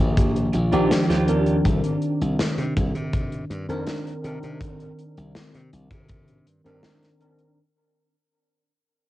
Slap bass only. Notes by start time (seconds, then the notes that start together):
0.00 A#1
0.54 A#1
0.73 A#1
1.10 D#2
1.65 C2
2.21 C2
2.58 C3
2.77 C2
2.95 C3
3.50 G2
3.69 F2
4.24 C3
4.43 C3
5.17 C2
5.55 C3
5.73 C2
5.91 C3
6.47 G2
6.66 G2